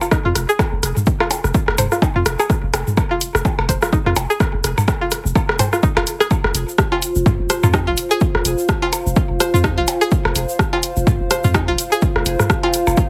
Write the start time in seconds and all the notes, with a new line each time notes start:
0.01 F4, percussion blips, shaker
0.11 D#4, kick, cross-stick, shaker
0.25 F2 F4
0.35 F1, cross-stick, closed hi-hat, shaker
0.49 G#4, shaker
0.59 kick, cross-stick, percussion blips, shaker
0.73 F1
0.83 F1, cross-stick, closed hi-hat, shaker
0.97 mid tom, shaker
1.06 kick, shaker
1.20 F4, cross-stick, percussion blips
1.31 closed hi-hat, percussion blips, shaker
1.44 F1, cross-stick, shaker
1.54 kick, shaker
1.68 F1, cross-stick
1.78 F1 C5, closed hi-hat, mid tom, percussion blips, shaker
1.92 F4, cross-stick, shaker
2.02 D#4, kick, percussion blips, shaker
2.16 F2 F4
2.26 F1, cross-stick, closed hi-hat, shaker
2.39 G#4, percussion blips, shaker
2.50 kick, cross-stick, shaker
2.63 F1
2.74 F1, cross-stick, closed hi-hat, percussion blips, shaker
2.87 mid tom, shaker
2.97 kick, cross-stick, percussion blips, shaker
3.11 F4
3.21 closed hi-hat, shaker
3.35 F1, cross-stick, shaker
3.45 kick, percussion blips, shaker
3.59 F1, cross-stick, percussion blips
3.69 F1 C5, kick, closed hi-hat, shaker
3.82 F4, cross-stick, shaker
3.92 D#4, kick, shaker
4.06 F2 F4, cross-stick
4.16 F1, closed hi-hat, percussion blips, shaker
4.30 G#4, shaker
4.40 kick, cross-stick, shaker
4.54 F1
4.64 F1, cross-stick, closed hi-hat, shaker
4.78 mid tom, percussion blips, shaker
4.88 kick, cross-stick, percussion blips, shaker
5.01 F4
5.11 cross-stick, closed hi-hat, shaker
5.25 F1, shaker
5.35 kick, percussion blips, shaker
5.49 cross-stick
5.59 C5, closed hi-hat, mid tom, percussion blips, shaker
5.73 F4, cross-stick, shaker
5.83 D#4, kick, shaker
5.97 F1 F4, cross-stick, closed hi-hat, percussion blips
6.07 closed hi-hat, shaker
6.20 G#4, cross-stick, shaker
6.31 F4, kick, percussion blips, shaker
6.44 F1 C5, cross-stick
6.55 F1, closed hi-hat, shaker
6.69 shaker
6.78 kick, cross-stick, shaker
6.92 F4, percussion blips
7.02 closed hi-hat, shaker
7.15 F1, shaker
7.26 kick, mid tom, shaker
7.40 F1
7.50 C5, cross-stick, closed hi-hat, shaker
7.63 F2 F4, mid tom, percussion blips, shaker
7.73 D#4, kick, cross-stick, percussion blips, shaker
7.87 G#1 F4
7.97 closed hi-hat, shaker
8.11 G#4, shaker
8.20 F5, kick, shaker
8.35 F1, cross-stick
8.45 F1, closed hi-hat, shaker
8.58 shaker
8.68 kick, cross-stick, shaker
8.82 F4, percussion blips
8.93 closed hi-hat, percussion blips, shaker
9.06 F1, shaker
9.16 kick, shaker
9.30 F1
9.40 C5, cross-stick, closed hi-hat, shaker
9.54 F2 F4, shaker
9.64 D#4, kick, cross-stick, shaker
9.78 G#1 F4
9.87 closed hi-hat, percussion blips, shaker
10.01 G#4, shaker
10.11 kick, shaker
10.25 F1, cross-stick, percussion blips
10.36 F1, closed hi-hat, shaker
10.49 shaker
10.59 kick, cross-stick, shaker
10.73 F4, percussion blips
10.83 closed hi-hat, shaker
10.96 F1, shaker
11.07 kick, mid tom, shaker
11.21 F1
11.31 C5, cross-stick, closed hi-hat, shaker
11.44 F2 F4, mid tom, shaker
11.54 D#4, kick, cross-stick, percussion blips, shaker
11.68 G#1 F4
11.78 closed hi-hat, shaker
11.92 G#4, shaker
12.02 kick, shaker
12.16 F1, cross-stick
12.26 F1, closed hi-hat, shaker
12.40 cross-stick, mid tom, shaker
12.50 kick, cross-stick, shaker
12.63 F4, closed hi-hat, percussion blips
12.74 closed hi-hat, shaker
12.87 F1, percussion blips, shaker
12.97 kick, shaker